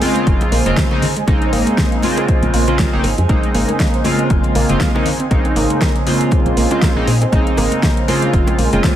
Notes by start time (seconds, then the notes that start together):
Already playing: C5 D#5 G#5
0.01 C#3 G#3 A#3 C4 F4, open hi-hat, high bongo, high conga
0.16 G#3, closed hi-hat
0.27 F1, kick, closed hi-hat
0.41 closed hi-hat, high bongo, high conga
0.52 A#1 A#3, open hi-hat
0.66 F1 C#3 G#3 A#3 C4 F4, closed hi-hat
0.77 A#3, kick, snare, closed hi-hat, high conga
0.91 C#3 G#3 A#3 C4 D#4, high bongo
1.02 open hi-hat, low conga
1.17 G#3, closed hi-hat
1.27 A#1 C#3 G#3 A#3 C4 D#4, kick, closed hi-hat, high bongo, high conga
1.42 closed hi-hat
1.53 G#1 A#3, open hi-hat
1.67 closed hi-hat, high conga
1.78 A#3, kick, snare, closed hi-hat, high bongo
1.92 closed hi-hat
2.02 C#3 G#3 A#3 C4 F4, open hi-hat, high conga
2.17 G#3, closed hi-hat, high bongo
2.28 kick, closed hi-hat
2.43 A#1, closed hi-hat, high conga
2.54 A#1 A#3, open hi-hat
2.67 C#3 G#3 A#3 C4 F4, closed hi-hat, high bongo
2.79 A#3, kick, snare, closed hi-hat, high conga
2.93 F1 C#3 G#3 A#3 C4 D#4
3.04 G#1, open hi-hat, high bongo
3.18 F2 G#3, closed hi-hat
3.29 A#1 C#3 G#3 A#3 C4 D#4, kick, closed hi-hat, high conga
3.43 closed hi-hat
3.55 G#1 A#3, open hi-hat
3.69 closed hi-hat, high bongo, high conga
3.80 A#3, kick, snare, closed hi-hat
3.94 closed hi-hat
4.04 C#3 G#3 A#3 C4 F4, open hi-hat, high bongo, high conga
4.19 G#3, closed hi-hat
4.30 F1, kick, closed hi-hat
4.44 closed hi-hat, high conga
4.55 A#1 A#3, open hi-hat, high bongo
4.69 F1 C#3 G#3 A#3 C4 F4, closed hi-hat
4.80 A#3, kick, snare, closed hi-hat, high conga
4.94 C#3 G#3 A#3 C4 D#4, high bongo
5.06 open hi-hat, low conga
5.20 C4, closed hi-hat
5.31 A#1 C#3 G#3 A#3 C4 D#4, kick, closed hi-hat, high conga
5.45 closed hi-hat, high bongo
5.56 G#1 A#3, open hi-hat
5.70 closed hi-hat, high conga
5.81 A#3, kick, snare, closed hi-hat, high bongo
5.96 closed hi-hat
6.06 C#3 G#3 A#3 C4 F4, open hi-hat, high conga
6.21 G#3, closed hi-hat
6.31 kick, closed hi-hat, high bongo
6.46 A#1, closed hi-hat, high conga
6.57 A#1 A#3, open hi-hat
6.71 C#3 G#3 A#3 C4 F4, closed hi-hat, high bongo
6.82 A#3, kick, snare, closed hi-hat, high conga
6.96 A#1 C#3 G#3 A#3 C4 D#4
7.07 A#2, open hi-hat
7.21 C4, closed hi-hat, high bongo
7.32 A#1 C#3 G#3 A#3 C4 D#4, kick, closed hi-hat, high conga
7.47 closed hi-hat
7.57 G#1 A#3, open hi-hat, high bongo
7.72 closed hi-hat, high conga
7.83 A#3, kick, snare, closed hi-hat
7.97 closed hi-hat
8.08 C#3 G#3 A#3 C4 F4, open hi-hat, high bongo, high conga
8.22 G#3, closed hi-hat
8.33 F1, kick, closed hi-hat
8.47 closed hi-hat, high bongo, high conga
8.59 A#1 A#3, open hi-hat
8.72 F1 C#3 G#3 A#3 C4 F4, closed hi-hat
8.84 A#3, kick, snare, closed hi-hat, high conga